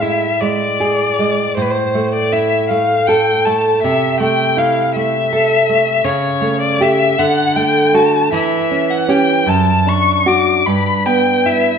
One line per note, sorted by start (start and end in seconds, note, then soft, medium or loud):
0.00 1.53 A2 soft
0.00 0.25 G#3 soft
0.00 0.65 E4 soft
0.00 0.42 E5 soft
0.40 1.03 G#3 soft
0.40 1.56 D5 medium
0.80 1.42 G#4 soft
1.19 1.57 G#3 soft
1.56 3.79 A2 soft
1.56 1.64 C5 soft
1.62 1.71 B4 soft
1.70 2.13 C5 soft
1.95 2.55 A3 soft
2.15 2.34 D5 soft
2.32 2.93 E4 soft
2.32 2.69 E5 soft
2.69 3.30 A3 soft
2.69 3.08 F5 medium
3.07 3.69 A4 soft
3.07 3.47 G5 medium
3.45 3.84 A3 soft
3.45 3.82 A5 medium
3.83 6.02 C3 soft
3.83 4.20 E5 medium
4.20 4.79 A3 soft
4.20 4.59 G5 medium
4.57 5.17 E4 soft
4.57 4.95 F5 soft
4.96 5.55 A3 soft
4.96 6.06 E5 medium
5.32 5.91 A4 soft
5.69 6.05 A3 soft
6.04 7.15 C#3 soft
6.04 6.61 C#5 medium
6.41 6.79 A3 soft
6.61 6.83 D5 medium
6.80 7.15 A3 soft
6.80 7.15 G4 soft
6.80 7.21 E5 medium
7.19 8.29 D3 soft
7.19 7.58 F#5 medium
7.56 7.93 A3 soft
7.56 7.96 G5 medium
7.94 8.29 A3 soft
7.94 8.29 F#4 soft
7.94 8.33 A5 medium
8.32 9.44 E3 medium
8.32 8.92 E5 medium
8.71 9.07 C#4 soft
8.90 9.11 F#5 medium
9.08 9.43 C#4 soft
9.08 9.43 G4 soft
9.08 9.50 G5 medium
9.46 10.61 F#2 soft
9.46 9.90 A5 medium
9.87 10.25 D4 soft
9.87 10.29 C#6 medium
10.26 10.62 D4 soft
10.26 10.62 F#4 soft
10.26 10.68 D6 medium
10.66 11.78 G2 soft
10.66 11.07 B5 medium
11.06 11.71 B3 soft
11.06 11.48 G5 medium
11.46 11.78 E4 soft
11.46 11.78 E5 soft